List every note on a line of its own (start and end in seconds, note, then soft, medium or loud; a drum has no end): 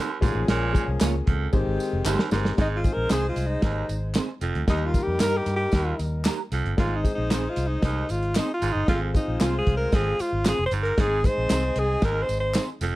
0.00 0.17 D#2 medium
0.21 0.32 A#1 loud
0.21 0.43 G#2 medium
0.21 1.25 F3 medium
0.21 0.64 G#3 loud
0.21 0.64 A#3 medium
0.21 0.64 C#4 medium
0.21 1.25 C#4 medium
0.21 0.64 F4 medium
0.21 0.28 G4 medium
0.21 1.25 G#4 medium
0.21 kick loud
0.21 snare soft
0.21 closed hi-hat medium
0.21 tambourine medium
0.28 0.67 G#4 loud
0.35 0.45 A1 medium
0.48 0.77 A#1 medium
0.48 0.86 A#2 loud
0.48 snare loud
0.48 closed hi-hat loud
0.48 tambourine soft
0.73 1.51 G#3 medium
0.73 1.53 A#3 medium
0.73 1.53 C#4 medium
0.73 1.53 F4 medium
0.73 1.53 G#4 medium
0.73 kick medium
0.73 closed hi-hat medium
0.73 tambourine medium
0.88 0.97 C2 medium
1.01 1.20 C#2 medium
1.01 1.13 A#3 medium
1.01 1.13 F4 medium
1.01 1.13 G#4 medium
1.01 1.14 C#5 medium
1.01 snare loud
1.01 clap medium
1.01 closed hi-hat medium
1.01 tambourine medium
1.27 1.47 C#2 medium
1.27 1.48 F2 medium
1.27 kick loud
1.27 closed hi-hat medium
1.53 1.63 G#1 loud
1.53 2.31 D#3 medium
1.53 2.16 G#3 loud
1.53 2.16 C4 medium
1.53 2.31 C4 medium
1.53 2.16 D#4 medium
1.53 2.16 G4 medium
1.53 2.31 G4 loud
1.53 2.16 C5 loud
1.53 kick medium
1.53 tambourine soft
1.67 1.76 G#1 medium
1.80 tambourine medium
1.93 2.02 F1 medium
2.05 2.15 G1 loud
2.05 2.27 D#2 medium
2.05 2.18 G#3 medium
2.05 2.18 D#4 medium
2.05 2.19 G4 loud
2.05 2.19 C5 medium
2.05 clap loud
2.05 tambourine medium
2.19 snare medium
2.31 2.51 G1 loud
2.31 2.53 G#2 medium
2.31 2.52 G#3 medium
2.31 2.53 C4 medium
2.31 2.53 D#4 medium
2.31 2.53 G4 medium
2.31 2.53 A#4 medium
2.31 snare loud
2.31 tambourine medium
2.45 snare loud
2.57 2.87 G#1 medium
2.57 2.79 G#2 medium
2.57 2.78 G#3 medium
2.57 4.38 G#3 medium
2.57 2.79 C4 medium
2.57 2.79 D#4 medium
2.57 4.38 D#4 medium
2.57 2.79 G#4 medium
2.57 4.38 C5 medium
2.57 kick medium
2.57 snare loud
2.57 closed hi-hat medium
2.57 tambourine soft
2.61 2.68 D#4 medium
2.76 2.95 F4 medium
2.83 3.67 G#3 medium
2.83 3.67 C4 medium
2.83 3.67 D#4 medium
2.83 3.68 G#4 medium
2.83 kick medium
2.83 closed hi-hat medium
2.83 tambourine medium
2.94 3.07 A#1 medium
2.94 3.12 A#4 loud
3.10 3.30 C2 medium
3.10 3.23 C4 medium
3.10 3.23 D#4 medium
3.10 3.28 G#4 medium
3.10 3.23 G#4 medium
3.10 3.23 C5 medium
3.10 snare loud
3.10 clap medium
3.10 closed hi-hat medium
3.10 tambourine medium
3.29 3.48 F4 medium
3.36 3.56 C2 medium
3.36 closed hi-hat medium
3.36 tambourine soft
3.46 3.99 D#4 medium
3.62 3.82 G#1 loud
3.62 3.84 D#2 medium
3.62 kick medium
3.62 snare loud
3.62 closed hi-hat medium
3.62 tambourine soft
3.89 4.18 G#1 medium
3.89 closed hi-hat medium
3.89 tambourine medium
4.15 4.28 C4 medium
4.15 4.28 D#4 medium
4.15 4.28 G#4 medium
4.15 4.28 C5 medium
4.15 snare loud
4.15 clap medium
4.15 closed hi-hat medium
4.15 tambourine medium
4.41 4.51 F1 medium
4.41 4.63 F2 medium
4.41 closed hi-hat medium
4.41 tambourine medium
4.55 4.65 D2 medium
4.55 closed hi-hat soft
4.68 4.89 D#2 medium
4.68 4.96 D#2 loud
4.68 4.89 G3 medium
4.68 6.48 G3 medium
4.68 4.89 A#3 medium
4.68 6.48 D#4 medium
4.68 4.89 D#4 medium
4.68 4.87 D#4 medium
4.68 4.90 G4 medium
4.68 6.48 A#4 medium
4.68 kick loud
4.68 snare loud
4.68 closed hi-hat medium
4.68 tambourine soft
4.86 5.04 F4 medium
4.94 5.77 G3 medium
4.94 5.77 A#3 medium
4.94 5.78 D#4 medium
4.94 5.78 A#4 medium
4.94 kick medium
4.94 closed hi-hat medium
4.94 tambourine medium
5.03 5.21 G4 medium
5.07 5.17 F2 medium
5.20 5.40 G2 medium
5.20 5.32 A#3 medium
5.20 5.33 D#4 medium
5.20 5.33 G4 medium
5.20 5.38 A#4 loud
5.20 5.33 A#4 medium
5.20 snare loud
5.20 clap medium
5.20 closed hi-hat medium
5.20 tambourine medium
5.37 5.55 G4 medium
5.46 5.66 G2 medium
5.46 closed hi-hat medium
5.46 tambourine soft
5.56 6.05 G4 medium
5.72 5.92 D#2 loud
5.72 5.94 D#2 medium
5.72 kick medium
5.72 snare loud
5.72 closed hi-hat medium
5.72 tambourine soft
5.99 6.28 D#2 medium
5.99 closed hi-hat medium
5.99 tambourine medium
6.25 6.38 A#3 medium
6.25 6.38 D#4 medium
6.25 6.38 G4 medium
6.25 6.39 A#4 medium
6.25 snare loud
6.25 clap medium
6.25 closed hi-hat medium
6.25 tambourine medium
6.52 6.61 C2 medium
6.52 6.73 F2 medium
6.52 snare soft
6.52 closed hi-hat medium
6.52 tambourine medium
6.65 6.74 G1 medium
6.65 closed hi-hat soft
6.77 7.07 G#1 loud
6.77 6.99 G#2 medium
6.77 6.99 G#3 medium
6.77 8.58 G#3 medium
6.77 6.99 C4 medium
6.77 6.99 D#4 medium
6.77 8.58 D#4 medium
6.77 6.98 F4 medium
6.77 6.99 G#4 medium
6.77 8.58 C5 medium
6.77 kick loud
6.77 snare loud
6.77 closed hi-hat medium
6.77 tambourine soft
6.96 7.13 D#4 medium
7.04 7.87 G#3 medium
7.04 7.87 C4 medium
7.04 7.87 D#4 medium
7.04 7.88 G#4 medium
7.04 kick medium
7.04 closed hi-hat medium
7.04 tambourine medium
7.15 7.46 A#1 medium
7.15 7.51 D#4 medium
7.31 7.43 C4 medium
7.31 7.43 D#4 medium
7.31 7.43 G#4 medium
7.31 7.44 C5 medium
7.31 snare loud
7.31 clap medium
7.31 closed hi-hat medium
7.31 tambourine medium
7.50 7.69 F4 medium
7.56 7.76 C2 medium
7.56 closed hi-hat medium
7.56 tambourine soft
7.67 7.84 D#4 medium
7.82 8.02 C2 loud
7.82 8.05 D#2 medium
7.82 8.12 D#4 medium
7.82 kick medium
7.82 snare loud
7.82 closed hi-hat medium
7.82 tambourine soft
8.09 8.38 G#1 medium
8.09 8.38 F4 medium
8.09 closed hi-hat medium
8.09 tambourine medium
8.23 closed hi-hat soft
8.35 8.48 C4 medium
8.35 8.53 D#4 medium
8.35 8.48 D#4 medium
8.35 8.48 G#4 medium
8.35 8.49 C5 medium
8.35 snare loud
8.35 clap medium
8.35 closed hi-hat medium
8.35 tambourine medium
8.54 8.74 F4 medium
8.62 8.72 G#1 medium
8.62 8.83 G#2 medium
8.62 closed hi-hat medium
8.62 tambourine medium
8.72 8.85 G1 medium
8.72 8.88 D#4 medium
8.88 9.17 G#1 medium
8.88 9.09 F2 medium
8.88 9.09 G#3 medium
8.88 10.69 G#3 medium
8.88 9.09 C4 medium
8.88 9.09 F4 medium
8.88 9.00 F4 medium
8.88 10.69 F4 medium
8.88 9.09 G#4 medium
8.88 10.69 C5 medium
8.88 kick loud
8.88 snare loud
8.88 closed hi-hat medium
8.88 tambourine soft
9.14 9.97 G#3 medium
9.14 9.97 C4 medium
9.14 9.43 D#4 medium
9.14 9.98 F4 medium
9.14 9.98 G#4 medium
9.14 kick medium
9.14 closed hi-hat medium
9.14 tambourine medium
9.28 9.37 A#1 medium
9.41 9.60 C2 loud
9.41 9.53 C4 medium
9.41 9.58 F4 medium
9.41 9.53 F4 medium
9.41 9.53 G#4 medium
9.41 9.54 C5 medium
9.41 snare loud
9.41 clap medium
9.41 closed hi-hat medium
9.41 tambourine medium
9.58 9.75 G#4 medium
9.67 9.86 C2 medium
9.67 kick medium
9.67 closed hi-hat medium
9.77 9.96 A#4 loud
9.92 10.12 G#1 medium
9.92 10.15 F2 medium
9.92 10.22 G#4 loud
9.92 kick medium
9.92 snare loud
9.92 closed hi-hat medium
9.92 tambourine soft
10.19 10.49 F4 medium
10.19 muted fingered electric bass stroke soft
10.19 closed hi-hat medium
10.19 tambourine medium
10.33 10.52 G#1 medium
10.45 10.58 C4 medium
10.45 10.58 F4 medium
10.45 10.58 G#4 medium
10.45 10.64 G#4 loud
10.45 10.58 C5 medium
10.45 snare loud
10.45 clap medium
10.45 closed hi-hat medium
10.45 tambourine medium
10.59 10.68 F1 medium
10.66 10.73 C5 medium
10.71 10.91 G1 medium
10.71 10.93 G#2 medium
10.71 closed hi-hat medium
10.71 tambourine medium
10.83 11.02 A#4 loud
10.83 closed hi-hat soft
10.97 11.26 G#1 loud
10.97 11.19 G#2 medium
10.97 11.19 G#3 medium
10.97 11.19 C4 medium
10.97 12.78 C4 medium
10.97 11.19 D#4 medium
10.97 11.19 G#4 medium
10.97 12.78 G#4 medium
10.97 11.27 G#4 loud
10.97 12.78 D#5 medium
10.97 kick loud
10.97 snare loud
10.97 closed hi-hat loud
10.97 tambourine soft
11.24 12.07 G#3 medium
11.24 12.07 C4 medium
11.24 12.07 D#4 medium
11.24 12.08 G#4 medium
11.24 11.81 C5 loud
11.24 kick loud
11.24 closed hi-hat medium
11.24 tambourine medium
11.38 11.47 A#1 medium
11.50 11.70 C2 medium
11.50 11.62 C4 medium
11.50 11.63 D#4 medium
11.50 11.63 G#4 medium
11.50 11.63 C5 medium
11.50 snare loud
11.50 clap medium
11.50 closed hi-hat medium
11.50 tambourine medium
11.76 11.95 C2 medium
11.76 12.06 G#4 loud
11.76 closed hi-hat medium
12.02 12.22 G#1 loud
12.02 12.24 D#2 medium
12.02 12.24 A#4 loud
12.02 kick medium
12.02 snare loud
12.02 closed hi-hat medium
12.02 tambourine soft
12.22 12.39 C5 loud
12.29 12.57 G#1 medium
12.29 closed hi-hat medium
12.29 tambourine medium
12.40 12.63 C5 medium
12.54 12.67 C4 medium
12.54 12.68 D#4 medium
12.54 12.68 G#4 medium
12.54 12.68 C5 medium
12.54 snare loud
12.54 clap medium
12.54 closed hi-hat medium
12.54 tambourine medium
12.81 12.91 F1 medium
12.81 12.96 F2 medium
12.81 snare soft
12.81 closed hi-hat medium
12.81 tambourine medium